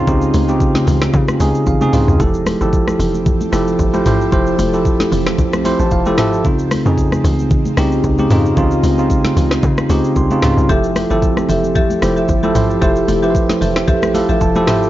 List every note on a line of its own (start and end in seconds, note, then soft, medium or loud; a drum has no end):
0.00 0.07 C#3 medium
0.00 2.16 C#3 medium
0.00 2.16 G#3 medium
0.00 0.08 C4 medium
0.00 2.16 C4 medium
0.00 0.08 D#4 medium
0.00 2.16 D#4 medium
0.00 1.94 F4 loud
0.00 2.16 F4 medium
0.07 0.30 C#2 loud
0.07 0.40 C#3 medium
0.07 0.40 C4 medium
0.07 0.40 D#4 medium
0.07 0.40 G4 loud
0.07 kick loud
0.07 shaker medium
0.22 shaker medium
0.34 0.80 C#2 loud
0.34 open hi-hat medium
0.34 high conga medium
0.34 shaker loud
0.48 1.22 C#3 medium
0.48 1.23 C4 medium
0.48 1.23 D#4 medium
0.48 1.23 G4 medium
0.48 shaker medium
0.60 kick loud
0.60 shaker medium
0.75 snare medium
0.75 high conga medium
0.75 shaker medium
0.87 1.10 C#2 medium
0.87 open hi-hat medium
0.87 low conga medium
0.87 shaker medium
1.02 cross-stick loud
1.02 snare medium
1.02 high conga soft
1.02 shaker medium
1.13 1.26 C#3 loud
1.13 kick loud
1.13 low conga medium
1.13 shaker medium
1.28 cross-stick loud
1.28 high conga medium
1.28 shaker medium
1.40 1.53 C#2 loud
1.40 1.73 C#3 medium
1.40 1.73 C4 medium
1.40 1.73 D#4 medium
1.40 1.73 G#4 loud
1.40 1.65 G#5 medium
1.40 open hi-hat medium
1.40 high conga medium
1.40 shaker loud
1.55 shaker medium
1.66 1.79 G#1 loud
1.66 1.92 F5 medium
1.66 kick medium
1.66 high tom medium
1.66 shaker medium
1.81 1.91 C#3 loud
1.81 1.91 C4 medium
1.81 1.91 D#4 medium
1.81 1.91 G#4 loud
1.81 mid tom medium
1.81 high conga medium
1.81 shaker medium
1.93 2.06 C2 medium
1.93 2.15 C#3 medium
1.93 2.15 C4 medium
1.93 2.15 D#4 medium
1.93 2.16 F4 medium
1.93 2.18 D#5 medium
1.93 mid tom loud
1.93 open hi-hat medium
1.93 shaker loud
2.08 2.18 C#2 medium
2.08 floor tom loud
2.08 shaker soft
2.20 2.55 F1 loud
2.20 2.52 F3 medium
2.20 6.41 F3 medium
2.20 14.90 C4 medium
2.20 2.52 E4 medium
2.20 6.41 E4 medium
2.20 6.41 G4 medium
2.20 2.53 G4 medium
2.20 6.41 A4 medium
2.20 2.53 A4 loud
2.20 kick loud
2.20 shaker medium
2.34 shaker medium
2.46 cross-stick loud
2.46 open hi-hat medium
2.46 high conga medium
2.46 shaker loud
2.61 2.94 G1 medium
2.61 3.35 F3 medium
2.61 3.35 E4 medium
2.61 3.35 G4 medium
2.61 3.35 A4 loud
2.61 shaker soft
2.73 kick loud
2.73 shaker medium
2.88 cross-stick medium
2.88 high conga medium
2.88 shaker medium
2.99 3.35 F1 loud
2.99 open hi-hat medium
2.99 low conga medium
2.99 shaker medium
3.14 high conga soft
3.14 shaker medium
3.26 kick loud
3.26 low conga medium
3.26 shaker medium
3.41 high conga medium
3.41 shaker medium
3.52 3.75 F1 medium
3.52 3.85 F3 medium
3.52 3.85 E4 medium
3.52 3.85 G4 medium
3.52 3.85 A4 loud
3.52 cross-stick medium
3.52 open hi-hat medium
3.52 high conga medium
3.52 shaker loud
3.67 shaker medium
3.79 4.02 G1 loud
3.79 kick medium
3.79 shaker medium
3.93 4.03 F3 medium
3.93 4.03 E4 medium
3.93 4.04 G4 medium
3.93 4.04 C5 loud
3.93 high conga medium
3.93 shaker medium
4.06 4.29 A1 medium
4.06 4.28 F3 medium
4.06 4.28 E4 medium
4.06 4.28 G4 medium
4.06 4.28 C5 loud
4.06 mid tom loud
4.06 open hi-hat medium
4.06 shaker medium
4.21 shaker soft
4.32 4.55 F1 loud
4.32 4.65 F3 medium
4.32 4.65 E4 medium
4.32 4.65 G4 medium
4.32 4.65 C5 loud
4.32 kick loud
4.32 shaker medium
4.47 shaker medium
4.59 5.05 F1 loud
4.59 open hi-hat medium
4.59 high conga medium
4.59 shaker loud
4.73 5.47 F3 medium
4.73 5.47 E4 medium
4.73 5.48 G4 medium
4.73 5.48 A4 medium
4.73 shaker soft
4.85 kick loud
4.85 shaker medium
5.00 snare medium
5.00 high conga medium
5.00 shaker medium
5.12 5.35 F1 loud
5.12 open hi-hat medium
5.12 low conga medium
5.12 shaker medium
5.26 cross-stick loud
5.26 snare medium
5.26 high conga soft
5.26 shaker medium
5.38 5.74 A1 loud
5.38 kick loud
5.38 low conga medium
5.38 shaker medium
5.53 cross-stick loud
5.53 high conga medium
5.53 shaker medium
5.65 5.97 F3 medium
5.65 5.97 E4 medium
5.65 5.98 G4 medium
5.65 5.98 C5 loud
5.65 5.79 C6 medium
5.65 open hi-hat medium
5.65 high conga medium
5.65 shaker loud
5.79 5.90 A1 loud
5.79 5.91 A5 medium
5.79 shaker medium
5.91 6.19 F1 loud
5.91 6.16 F5 medium
5.91 kick medium
5.91 shaker medium
6.06 6.16 F3 medium
6.06 6.16 E4 medium
6.06 6.16 G4 medium
6.06 6.16 A4 loud
6.06 high conga medium
6.06 shaker medium
6.18 6.46 G1 medium
6.18 6.40 F3 medium
6.18 6.40 E4 medium
6.18 6.40 G4 medium
6.18 6.40 A4 loud
6.18 6.43 E5 medium
6.18 cross-stick loud
6.18 snare medium
6.18 mid tom loud
6.18 open hi-hat medium
6.18 shaker medium
6.33 shaker soft
6.44 6.80 C#2 loud
6.44 6.77 C#3 medium
6.44 10.66 C#3 medium
6.44 10.66 G#3 medium
6.44 6.77 C4 medium
6.44 10.66 D#4 medium
6.44 6.77 D#4 medium
6.44 10.66 F4 medium
6.44 6.77 F4 medium
6.44 kick loud
6.44 shaker medium
6.59 shaker medium
6.71 cross-stick loud
6.71 open hi-hat medium
6.71 high conga medium
6.71 shaker loud
6.86 7.19 F2 medium
6.86 7.60 C#3 medium
6.86 7.60 C4 medium
6.86 7.60 D#4 medium
6.86 7.60 G#4 loud
6.86 shaker soft
6.98 kick loud
6.98 shaker medium
7.12 cross-stick medium
7.12 high conga medium
7.12 shaker medium
7.24 7.60 C#2 loud
7.24 open hi-hat medium
7.24 low conga medium
7.24 shaker medium
7.39 high conga soft
7.39 shaker medium
7.51 kick loud
7.51 low conga medium
7.51 shaker medium
7.65 high conga medium
7.65 shaker medium
7.77 8.00 C2 loud
7.77 8.10 C#3 medium
7.77 8.10 C4 medium
7.77 8.10 D#4 medium
7.77 8.10 G4 loud
7.77 cross-stick loud
7.77 open hi-hat medium
7.77 high conga medium
7.77 shaker loud
7.92 shaker medium
8.04 8.27 C#2 medium
8.04 kick medium
8.04 shaker medium
8.18 8.28 C#3 medium
8.18 8.28 C4 medium
8.18 8.28 D#4 medium
8.18 8.29 G4 loud
8.18 high conga medium
8.18 shaker medium
8.30 8.53 F2 loud
8.30 8.52 C#3 medium
8.30 8.52 C4 medium
8.30 8.53 D#4 medium
8.30 8.53 F4 loud
8.30 mid tom loud
8.30 open hi-hat medium
8.30 shaker medium
8.46 shaker soft
8.57 8.80 C#2 loud
8.57 8.89 C#3 medium
8.57 8.90 C4 medium
8.57 8.90 D#4 medium
8.57 8.90 F4 loud
8.57 kick loud
8.57 low conga medium
8.57 shaker medium
8.71 shaker medium
8.83 9.29 C#2 loud
8.83 open hi-hat medium
8.83 high conga medium
8.83 shaker loud
8.98 9.72 C#3 medium
8.98 9.72 C4 medium
8.98 9.72 D#4 medium
8.98 9.73 F4 medium
8.98 shaker soft
9.10 kick loud
9.10 shaker medium
9.25 snare medium
9.25 high conga medium
9.25 shaker medium
9.37 9.60 C#2 loud
9.37 open hi-hat medium
9.37 low conga medium
9.37 shaker medium
9.51 cross-stick loud
9.51 snare medium
9.51 high conga soft
9.51 shaker medium
9.63 9.76 C#3 loud
9.63 kick loud
9.63 low conga medium
9.63 shaker medium
9.78 cross-stick loud
9.78 high conga medium
9.78 shaker medium
9.89 10.02 C#2 loud
9.89 10.22 C#3 loud
9.89 10.22 C4 medium
9.89 10.22 D#4 medium
9.89 10.23 G4 loud
9.89 open hi-hat medium
9.89 high conga medium
9.89 shaker loud
10.04 shaker medium
10.16 10.29 C2 loud
10.16 10.66 C6 medium
10.16 kick medium
10.16 shaker medium
10.30 10.40 C#3 medium
10.30 10.41 C4 medium
10.30 10.41 D#4 medium
10.30 10.41 F4 loud
10.30 high conga medium
10.30 shaker medium
10.43 10.55 C#2 medium
10.43 10.65 C#3 medium
10.43 10.65 C4 medium
10.43 10.65 D#4 medium
10.43 10.65 F4 loud
10.43 cross-stick medium
10.43 snare medium
10.43 mid tom medium
10.43 open hi-hat medium
10.43 shaker loud
10.57 10.68 C2 medium
10.57 shaker soft
10.69 11.05 F1 loud
10.69 11.02 F3 medium
10.69 14.90 F3 medium
10.69 14.90 E4 medium
10.69 11.02 E4 medium
10.69 11.07 G4 loud
10.69 14.90 G4 medium
10.69 11.02 G4 medium
10.69 14.90 A4 medium
10.69 11.07 A4 medium
10.69 11.02 A4 medium
10.69 11.07 E5 loud
10.69 kick loud
10.69 shaker medium
10.84 shaker medium
10.96 cross-stick loud
10.96 open hi-hat medium
10.96 high conga medium
10.96 shaker loud
11.10 11.44 G1 medium
11.10 11.84 F3 medium
11.10 11.84 E4 medium
11.10 11.46 G4 medium
11.10 11.85 G4 medium
11.10 11.46 A4 medium
11.10 11.85 A4 loud
11.10 11.46 E5 medium
11.10 shaker soft
11.22 kick loud
11.22 shaker medium
11.37 cross-stick medium
11.37 high conga medium
11.37 shaker medium
11.49 11.85 F1 loud
11.49 11.74 G4 medium
11.49 11.74 A4 medium
11.49 11.74 E5 medium
11.49 open hi-hat medium
11.49 low conga medium
11.49 shaker medium
11.63 high conga soft
11.63 shaker medium
11.75 12.13 G4 loud
11.75 12.13 A4 medium
11.75 12.13 E5 loud
11.75 kick loud
11.75 low conga medium
11.75 shaker medium
11.90 high conga medium
11.90 shaker medium
12.02 12.25 F1 loud
12.02 12.34 F3 medium
12.02 12.35 E4 medium
12.02 12.35 G4 medium
12.02 12.35 C5 loud
12.02 cross-stick loud
12.02 open hi-hat medium
12.02 high conga medium
12.02 shaker loud
12.16 12.25 G4 medium
12.16 12.25 A4 medium
12.16 12.25 E5 medium
12.16 shaker medium
12.28 12.52 G1 loud
12.28 kick medium
12.28 shaker medium
12.43 12.53 F3 medium
12.43 12.53 E4 medium
12.43 12.51 G4 medium
12.43 12.53 G4 medium
12.43 12.51 A4 medium
12.43 12.53 A4 loud
12.43 12.51 E5 medium
12.43 high conga medium
12.43 shaker soft
12.55 12.78 A1 medium
12.55 12.77 F3 medium
12.55 12.77 E4 medium
12.55 12.77 G4 medium
12.55 12.77 C5 loud
12.55 mid tom loud
12.55 open hi-hat medium
12.55 shaker loud
12.70 shaker soft
12.81 13.05 F1 loud
12.81 13.14 F3 medium
12.81 13.14 E4 medium
12.81 13.19 G4 loud
12.81 13.14 G4 medium
12.81 13.19 A4 medium
12.81 13.15 C5 loud
12.81 13.20 E5 loud
12.81 kick loud
12.81 shaker medium
12.96 shaker medium
13.08 13.54 F1 loud
13.08 open hi-hat medium
13.08 high conga medium
13.08 shaker loud
13.22 13.97 F3 medium
13.22 13.97 E4 medium
13.22 13.58 G4 medium
13.22 13.97 G4 medium
13.22 13.59 A4 medium
13.22 13.29 B4 medium
13.22 13.59 E5 medium
13.22 shaker soft
13.30 14.00 C5 medium
13.35 kick loud
13.35 shaker medium
13.49 snare medium
13.49 high conga medium
13.49 shaker medium
13.61 13.84 F1 loud
13.61 13.86 G4 medium
13.61 13.86 A4 medium
13.61 13.86 E5 medium
13.61 open hi-hat medium
13.61 low conga medium
13.61 shaker medium
13.76 cross-stick loud
13.76 snare medium
13.76 high conga soft
13.76 shaker medium
13.87 14.24 A1 loud
13.87 14.25 G4 loud
13.87 14.26 A4 medium
13.87 14.26 E5 loud
13.87 kick loud
13.87 low conga medium
13.87 shaker medium
14.03 cross-stick loud
14.03 high conga medium
14.03 shaker medium
14.14 14.47 F3 medium
14.14 14.47 E4 medium
14.14 14.47 G4 medium
14.14 14.47 A4 loud
14.14 14.39 F5 medium
14.14 open hi-hat medium
14.14 high conga medium
14.14 shaker loud
14.29 14.39 A1 medium
14.29 14.65 G4 medium
14.29 14.65 A4 medium
14.29 14.65 E5 medium
14.29 shaker medium
14.41 14.69 F1 loud
14.41 14.90 A5 medium
14.41 kick medium
14.41 shaker medium
14.55 14.65 F3 medium
14.55 14.65 E4 medium
14.55 14.65 G4 medium
14.55 14.66 A4 loud
14.55 high conga medium
14.55 shaker medium
14.67 14.90 G1 medium
14.67 14.90 F3 medium
14.67 14.90 E4 medium
14.67 14.90 G4 medium
14.67 14.90 A4 medium
14.67 14.90 C5 loud
14.67 14.90 E5 medium
14.67 cross-stick loud
14.67 snare medium
14.67 mid tom loud
14.67 open hi-hat medium
14.67 shaker loud
14.83 shaker soft